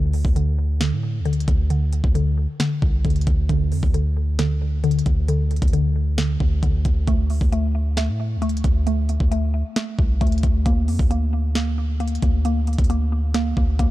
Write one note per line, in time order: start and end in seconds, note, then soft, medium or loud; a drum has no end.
0.00 0.23 D2 loud
0.00 0.35 D3 medium
0.13 open hi-hat medium
0.25 0.93 D2 loud
0.25 kick medium
0.36 0.79 D3 medium
0.36 closed hi-hat medium
0.81 1.24 D3 medium
0.81 snare loud
0.81 closed hi-hat medium
0.92 1.21 A2 medium
1.20 1.46 D2 medium
1.25 1.69 D3 medium
1.25 closed hi-hat soft
1.33 closed hi-hat medium
1.40 closed hi-hat medium
1.48 2.02 D2 loud
1.48 kick loud
1.48 closed hi-hat medium
1.70 2.14 D3 medium
1.70 closed hi-hat medium
1.93 closed hi-hat medium
2.04 2.47 D2 loud
2.04 kick medium
2.15 2.59 D3 medium
2.15 closed hi-hat medium
2.60 3.03 D3 medium
2.60 snare loud
2.60 closed hi-hat medium
2.82 3.04 C2 loud
2.82 kick medium
3.05 3.26 D2 loud
3.05 3.48 D3 medium
3.05 kick medium
3.05 closed hi-hat medium
3.10 closed hi-hat medium
3.16 closed hi-hat medium
3.21 closed hi-hat medium
3.27 3.48 D2 loud
3.27 kick loud
3.27 closed hi-hat medium
3.49 3.73 D2 loud
3.49 3.93 D3 medium
3.49 kick loud
3.49 closed hi-hat medium
3.72 3.82 F2 loud
3.72 open hi-hat medium
3.83 5.02 D2 loud
3.83 kick loud
3.94 4.38 D3 medium
3.94 closed hi-hat medium
4.39 4.82 D3 medium
4.39 snare loud
4.39 closed hi-hat medium
4.84 5.27 D3 medium
4.84 closed hi-hat medium
4.91 closed hi-hat medium
4.99 closed hi-hat medium
5.06 5.60 D2 loud
5.06 kick loud
5.06 closed hi-hat medium
5.28 5.72 D3 medium
5.28 closed hi-hat medium
5.51 closed hi-hat soft
5.51 open hi-hat medium
5.56 closed hi-hat medium
5.62 6.37 D2 loud
5.62 kick medium
5.62 closed hi-hat medium
5.68 closed hi-hat medium
5.73 6.17 D3 medium
5.73 closed hi-hat medium
6.18 6.62 D3 medium
6.18 snare loud
6.18 closed hi-hat medium
6.40 6.62 D2 loud
6.40 kick medium
6.63 6.84 D2 loud
6.63 7.08 D3 medium
6.63 kick medium
6.63 closed hi-hat medium
6.85 7.07 D2 loud
6.85 kick loud
6.85 closed hi-hat medium
7.08 7.40 D2 loud
7.08 7.51 A3 medium
7.08 kick loud
7.08 closed hi-hat medium
7.30 open hi-hat medium
7.41 8.10 D2 loud
7.41 kick loud
7.52 7.96 A3 medium
7.52 closed hi-hat medium
7.97 8.41 A3 medium
7.97 snare loud
7.97 closed hi-hat medium
8.08 8.38 A2 loud
8.36 8.63 D2 loud
8.42 8.85 A3 medium
8.42 closed hi-hat medium
8.49 closed hi-hat medium
8.57 closed hi-hat medium
8.64 9.18 D2 loud
8.64 kick loud
8.64 closed hi-hat medium
8.87 9.30 A3 medium
8.87 closed hi-hat medium
9.09 closed hi-hat medium
9.20 9.63 D2 loud
9.20 kick medium
9.31 9.75 A3 medium
9.31 closed hi-hat medium
9.76 10.20 A3 medium
9.76 snare loud
9.76 closed hi-hat medium
9.99 10.20 C2 loud
9.99 kick medium
10.21 10.43 D2 loud
10.21 10.66 A3 medium
10.21 kick loud
10.21 closed hi-hat medium
10.27 closed hi-hat medium
10.32 closed hi-hat medium
10.38 closed hi-hat medium
10.43 10.65 D2 loud
10.43 kick loud
10.43 closed hi-hat medium
10.66 10.90 D2 loud
10.66 11.09 A#3 medium
10.66 kick loud
10.66 closed hi-hat medium
10.88 10.99 F2 loud
10.88 open hi-hat medium
10.99 12.18 D2 loud
10.99 kick medium
11.11 11.54 A#3 medium
11.11 closed hi-hat medium
11.55 11.99 A#3 medium
11.55 snare loud
11.55 closed hi-hat medium
12.00 12.44 A#3 medium
12.00 closed hi-hat medium
12.08 closed hi-hat medium
12.15 closed hi-hat medium
12.22 12.76 D2 loud
12.22 kick loud
12.22 closed hi-hat medium
12.45 12.88 A#3 medium
12.45 closed hi-hat medium
12.67 closed hi-hat soft
12.67 open hi-hat medium
12.73 closed hi-hat medium
12.78 13.54 D2 loud
12.78 kick medium
12.78 closed hi-hat medium
12.84 closed hi-hat medium
12.90 13.33 A#3 medium
12.90 closed hi-hat medium
13.34 13.78 A#3 loud
13.34 snare loud
13.34 closed hi-hat medium
13.57 13.78 D2 loud
13.57 kick medium
13.79 13.91 D2 loud
13.79 13.91 A#3 medium
13.79 kick loud
13.79 closed hi-hat medium